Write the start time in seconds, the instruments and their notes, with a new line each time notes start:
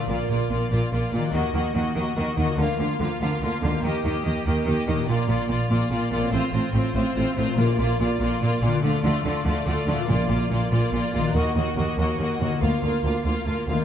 Already playing: harp A#2 D4
0.01 harp F4
0.05 double bass section A#1, cello section A#2, viola section A#3, harp A#4, violin section D5
0.10 violin section F4
0.29 double bass section A#1, cello section A#2, viola section A#3, violin section F4 D5
0.50 double bass section A#1, cello section A#2, viola section A#3, violin section F4 D5
0.71 double bass section A#1, cello section A#2, viola section A#3, violin section F4 D5
0.91 double bass section A#1, cello section A#2, viola section A#3, violin section F4 D5
1.12 double bass section A#1, cello section A#2, viola section A#3, violin section F4 D5
1.16 harp D#3
1.21 harp A#3
1.26 harp F#4
1.30 double bass section D#2, cello section D#3, viola section A#3, violin section F#4, harp A#4
1.35 violin section D#5
1.53 double bass section D#2, cello section D#3, viola section A#3, violin section F#4 D#5
1.74 double bass section D#2, cello section D#3, viola section A#3, violin section F#4 D#5
1.95 double bass section D#2, cello section D#3, viola section A#3, violin section F#4 D#5
2.16 double bass section D#2, cello section D#3, viola section A#3, violin section F#4 D#5
2.37 double bass section D#2, cello section D#3, viola section A#3, violin section F#4 D#5
2.41 harp D3
2.46 harp A#3
2.50 harp F4
2.55 double bass section D2, cello section D3, harp A#4, violin section F5
2.59 viola section A#3, violin section F4
2.79 double bass section D2, cello section D3, viola section A#3, violin section F4 F5
2.99 double bass section D2, cello section D3, viola section A#3, violin section F4 F5
3.20 double bass section D2, cello section D3, viola section A#3, violin section F4 F5
3.41 double bass section D2, cello section D3, viola section A#3, violin section F4 F5
3.62 double bass section D2, cello section D3, harp D#3, viola section A#3, violin section F4 F5
3.70 harp A#3
3.75 harp G4
3.79 double bass section D#2, harp A#4
3.84 cello section D#3, viola section A#3, violin section G4 D#5
4.04 double bass section D#2, cello section D#3, viola section A#3, violin section G4 D#5
4.25 double bass section D#2, cello section D#3, viola section A#3, violin section G4 D#5
4.45 double bass section D#2, cello section D#3, viola section A#3, violin section G4 D#5
4.66 double bass section D#2, cello section D#3, viola section A#3, violin section G4 D#5
4.87 double bass section D#2, harp A#2, cello section D#3, viola section A#3, violin section G4 D#5
4.94 harp D4
4.99 harp F4
5.03 harp A#4
5.08 double bass section A#1, cello section A#2, viola section A#3, violin section F4 D5
5.28 double bass section A#1, cello section A#2, viola section A#3, violin section F4 D5
5.49 double bass section A#1, cello section A#2, viola section A#3, violin section F4 D5
5.69 double bass section A#1, cello section A#2, viola section A#3, violin section F4 D5
5.90 double bass section A#1, cello section A#2, viola section A#3, violin section F4 D5
6.11 double bass section A#1, cello section A#2, viola section A#3, violin section F4 D5
6.15 harp A2
6.20 harp C4
6.24 harp F4
6.29 double bass section A1, cello section A2, viola section C4, violin section F4 C5, harp C5
6.53 double bass section A1, cello section A2, viola section C4, violin section F4 C5
6.73 double bass section A1, cello section A2, viola section C4, violin section F4 C5
6.94 double bass section A1, cello section A2, viola section C4, violin section F4 C5
7.15 double bass section A1, cello section A2, viola section C4, violin section F4 C5
7.36 double bass section A1, cello section A2, harp A#2, viola section C4, violin section F4 C5
7.45 harp D4
7.49 harp F4
7.54 double bass section A#1, violin section F4, harp A#4
7.58 cello section A#2, timpani A#2, viola section A#3, violin section D5
7.78 double bass section A#1, cello section A#2, viola section A#3, violin section F4 D5
7.99 double bass section A#1, cello section A#2, viola section A#3, violin section F4 D5
8.20 double bass section A#1, cello section A#2, viola section A#3, violin section F4 D5
8.41 double bass section A#1, cello section A#2, viola section A#3, violin section F4 D5
8.61 double bass section A#1, cello section A#2, viola section A#3, violin section F4 D5
8.66 harp D3
8.70 harp D4
8.75 harp F4
8.79 double bass section D2, cello section D3, viola section A3, violin section F4, harp A4
8.84 violin section D5
9.03 double bass section D2, cello section D3, viola section A3, violin section F4 D5
9.24 double bass section D2, cello section D3, viola section A3, violin section F4 D5
9.45 double bass section D2, cello section D3, viola section A3, violin section F4 D5
9.66 double bass section D2, cello section D3, viola section A3, violin section F4 D5
9.87 double bass section D2, cello section D3, viola section A3, violin section F4 D5
9.91 harp A#2
9.96 harp D4
10.00 harp F4
10.05 double bass section A#1, cello section A#2, viola section A#3, violin section F4, harp A#4
10.10 timpani A#2, violin section D5
10.29 double bass section A#1, cello section A#2, viola section A#3, violin section F4 D5
10.50 double bass section A#1, cello section A#2, viola section A#3, violin section F4 D5
10.72 double bass section A#1, cello section A#2, viola section A#3, violin section F4 D5
10.92 double bass section A#1, cello section A#2, viola section A#3, violin section F4 D5
11.14 double bass section A#1, cello section A#2, harp D#3, viola section A#3, violin section F4 D5
11.22 harp A#3
11.27 harp F#4
11.31 cello section D#2, viola section A#3, harp A#4, violin section D#5
11.35 double bass section D#2, violin section F#4
11.56 double bass section D#2, cello section D#2, viola section A#3, violin section F#4 D#5
11.76 cello section D#2, double bass section D#2, viola section A#3, violin section F#4 D#5
11.98 double bass section D#2, cello section D#2, viola section A#3, violin section F#4 D#5
12.19 cello section D#2, double bass section D#2, viola section A#3, violin section F#4 D#5
12.39 cello section D#2, double bass section D#2, viola section A#3, violin section F#4 D#5
12.44 harp D3
12.48 harp A#3
12.53 harp F4
12.57 double bass section D2, harp A#4
12.61 cello section D2, viola section A#3, violin section F4 F5
12.82 double bass section D2, cello section D2, viola section A#3, violin section F4 F5
13.03 double bass section D2, cello section D2, viola section A#3, violin section F4 F5
13.24 double bass section D2, cello section D2, viola section A#3, violin section F4 F5
13.45 double bass section D2, cello section D2, viola section A#3, violin section F4 F5
13.67 double bass section D2, cello section D2, viola section A#3, violin section F4 F5
13.72 harp D#3
13.76 harp A#3
13.81 harp G4